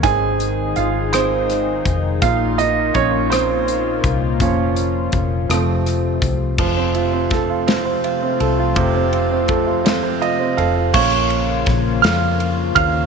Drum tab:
CC |------|------|------|x-----|
RD |------|------|------|-xxxxx|
HH |xxxxxx|xxxxxx|xxxxxx|------|
SD |---rr-|---r--|---rr-|--oo--|
BD |o----o|o-o--o|o-o--o|o-o---|

CC |------|x-----|
RD |xxxxxx|-xxxxx|
HH |------|------|
SD |---o--|--oo--|
BD |o-o---|o-o--o|